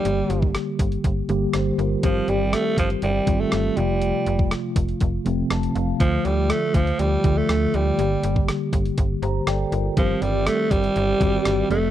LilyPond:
<<
  \new Staff \with { instrumentName = "Tine electric piano" } { \time 4/4 \key g \minor \tempo 4 = 121 r2. <g' c''>8 <f' bes'>8~ | <f' bes'>8 r2. r8 | r2. a''8 f''8 | r1 |
r2 r8 <g' c'' bes''>8 <a' d'' g''>8 <f' bes'>8~ | <f' bes'>8 r2. r8 | }
  \new Staff \with { instrumentName = "Tine electric piano" } { \time 4/4 \key g \minor <d g bes g'>4. r4 <d g bes g'>4 r8 | <ees g c' g'>4. r4 <ees g c' f'>4 <c f a f'>8~ | <c f a f'>4 r4. <c f a c'>4 r8 | <d f a f'>4. r4 <d f a f'>4 r8 |
<d g bes g'>4. r2 r8 | <ees g c' g'>4. r4 <ees g c' fis' g'>4 <f a c' a'>8 | }
  \new Staff \with { instrumentName = "Alto saxophone" } { \clef bass \time 4/4 \key g \minor g4 r2. | f8 g8 a8 f8 g8. a8. g8~ | g4 r2. | f8 g8 a8 f8 g8. a8. g8~ |
g4 r2. | f8 g8 a8 g2 a8 | }
  \new Staff \with { instrumentName = "FM bass" } { \clef bass \time 4/4 \key g \minor g,,8 g,,8. r16 g,,8 g,,8 g,,8 g,,8 g,,8 | g,,8 g,,8. r16 g,,8 g,,8 g,,8 g,,8 f,,8~ | f,,8 f,,8. r16 f,,8 f,,8 f,,8 f,,8 f,,8 | d,8 d,8. r16 d,8 d,8 d,8 d,8 d,8 |
g,,8 g,,8. r16 g,,8 g,,8 g,,8 g,,8 g,,8 | g,,8 g,,8. r16 g,,8 g,,8 g,,8 g,,8 f,,8 | }
  \new DrumStaff \with { instrumentName = "Drums" } \drummode { \time 4/4 hh8 hh16 bd16 <hh ss>8 <hh bd>16 hh16 <hh bd>8 hh8 <hh ss>8 hh8 | <hh bd>8 hh8 <hh ss>8 <hh bd>16 hh16 hh8 <hh bd>8 <hh ss>8 hh8 | hh8 hh16 bd16 <hh ss>8 <hh bd>16 hh16 <hh bd>8 hh8 <hh ss>16 hh16 hh8 | <hh bd>8 hh8 <hh ss>8 <hh bd>16 hh16 hh8 <hh bd>8 <hh ss>8 hh8 |
hh8 hh16 bd16 <hh ss>8 <hh bd>16 hh16 <hh bd>8 hh8 <hh ss>8 hh8 | <hh bd>8 hh8 <hh ss>8 <hh bd>16 hh16 hh8 <hh bd>8 <hh ss>8 hh8 | }
>>